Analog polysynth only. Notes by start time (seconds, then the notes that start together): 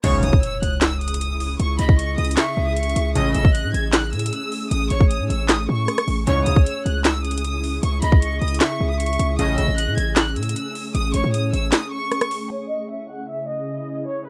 0.04 E2 G#2 C#3
3.15 C#2 A2 C#3
6.27 E2 G#2 C#3
9.39 C#2 A2 C#3